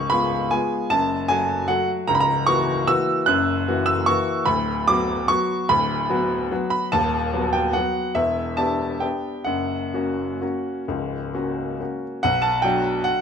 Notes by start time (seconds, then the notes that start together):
Already playing: C#1 C#2 C#6
0.10 G#3 B3 F4 B5
0.51 G#3 B3 F4 G#5
0.90 F#1 F#2 A5
1.28 F#3 A3 F#4 G#5
1.68 F#3 A3 F#4 F#5
2.08 C#1 C#2 A#5
2.15 B5
2.20 A#5
2.47 E3 A#3 F#4 C#6
2.87 E3 A#3 F#4 E6
3.26 F#1 F#2 F#6
3.68 E3 A#3 F#4
3.86 E6
4.06 E3 A#3 F#4 C#6
4.46 D1 D2 B5
4.88 F#3 B3 F#4 D6
5.28 F#3 B3 F#4 C#6
5.69 D1 D2 B5
6.10 F#3 B3 F#4
6.51 F#3 B3 F#4
6.70 B5
6.92 D#1 D#2 A5
7.34 F#3 B3 F#4
7.53 G5
7.73 F#3 B3 F#4 F#5
8.15 E1 E2 E5
8.57 B3 D4 G4 A5
9.00 B3 D4 G4 G5
9.45 F#1 F#2 F#5
9.93 A#3 C#4 F#4
10.41 A#3 C#4 F#4
10.88 C#1 C#2
11.34 A#3 C#4 F#4
11.80 A#3 C#4 F#4
12.23 B1 F#5
12.42 A5
12.62 F#3 D4 F#4 G5
13.04 F#5